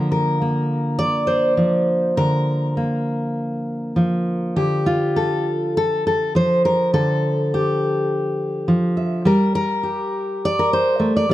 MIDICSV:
0, 0, Header, 1, 2, 480
1, 0, Start_track
1, 0, Tempo, 585366
1, 1781, Time_signature, 4, 2, 24, 8
1, 2266, Tempo, 600000
1, 4666, Tempo, 583658
1, 9251, End_track
2, 0, Start_track
2, 0, Title_t, "Steel-string acoustic guitar"
2, 0, Program_c, 0, 25
2, 0, Note_on_c, 0, 50, 83
2, 0, Note_on_c, 0, 53, 51
2, 0, Note_on_c, 0, 58, 54
2, 0, Note_on_c, 0, 70, 76
2, 85, Note_off_c, 0, 70, 0
2, 95, Note_on_c, 0, 70, 85
2, 338, Note_off_c, 0, 58, 0
2, 341, Note_on_c, 0, 58, 43
2, 809, Note_on_c, 0, 74, 116
2, 1038, Note_off_c, 0, 70, 0
2, 1041, Note_on_c, 0, 72, 89
2, 1286, Note_off_c, 0, 53, 0
2, 1289, Note_on_c, 0, 53, 63
2, 1535, Note_off_c, 0, 74, 0
2, 1773, Note_off_c, 0, 72, 0
2, 1779, Note_off_c, 0, 50, 0
2, 1782, Note_on_c, 0, 50, 75
2, 1782, Note_on_c, 0, 70, 110
2, 2261, Note_off_c, 0, 58, 0
2, 2271, Note_on_c, 0, 58, 43
2, 3220, Note_off_c, 0, 53, 0
2, 3224, Note_on_c, 0, 53, 66
2, 3702, Note_off_c, 0, 50, 0
2, 3705, Note_on_c, 0, 50, 73
2, 3707, Note_on_c, 0, 67, 79
2, 3710, Note_off_c, 0, 70, 0
2, 3712, Note_off_c, 0, 58, 0
2, 3946, Note_on_c, 0, 65, 77
2, 4186, Note_on_c, 0, 69, 88
2, 4428, Note_off_c, 0, 67, 0
2, 4662, Note_off_c, 0, 65, 0
2, 4662, Note_off_c, 0, 69, 0
2, 4672, Note_on_c, 0, 69, 101
2, 4906, Note_off_c, 0, 69, 0
2, 4916, Note_on_c, 0, 69, 93
2, 5138, Note_off_c, 0, 53, 0
2, 5148, Note_on_c, 0, 53, 69
2, 5152, Note_off_c, 0, 69, 0
2, 5158, Note_on_c, 0, 72, 100
2, 5393, Note_off_c, 0, 72, 0
2, 5396, Note_on_c, 0, 70, 98
2, 5598, Note_off_c, 0, 50, 0
2, 5628, Note_off_c, 0, 70, 0
2, 5629, Note_on_c, 0, 50, 70
2, 5631, Note_on_c, 0, 69, 103
2, 6127, Note_on_c, 0, 67, 79
2, 6590, Note_off_c, 0, 69, 0
2, 7054, Note_off_c, 0, 53, 0
2, 7064, Note_on_c, 0, 53, 71
2, 7299, Note_off_c, 0, 67, 0
2, 7302, Note_on_c, 0, 76, 53
2, 7514, Note_off_c, 0, 76, 0
2, 7517, Note_off_c, 0, 50, 0
2, 7536, Note_on_c, 0, 55, 83
2, 7543, Note_off_c, 0, 53, 0
2, 7546, Note_on_c, 0, 70, 105
2, 7771, Note_off_c, 0, 70, 0
2, 7781, Note_on_c, 0, 70, 110
2, 8013, Note_on_c, 0, 67, 49
2, 8518, Note_off_c, 0, 67, 0
2, 8521, Note_on_c, 0, 74, 113
2, 8621, Note_off_c, 0, 70, 0
2, 8637, Note_on_c, 0, 70, 88
2, 8749, Note_off_c, 0, 74, 0
2, 8752, Note_on_c, 0, 72, 100
2, 8969, Note_on_c, 0, 57, 66
2, 9105, Note_off_c, 0, 72, 0
2, 9108, Note_on_c, 0, 74, 91
2, 9210, Note_off_c, 0, 57, 0
2, 9214, Note_off_c, 0, 55, 0
2, 9214, Note_on_c, 0, 55, 72
2, 9219, Note_off_c, 0, 74, 0
2, 9232, Note_off_c, 0, 70, 0
2, 9251, Note_off_c, 0, 55, 0
2, 9251, End_track
0, 0, End_of_file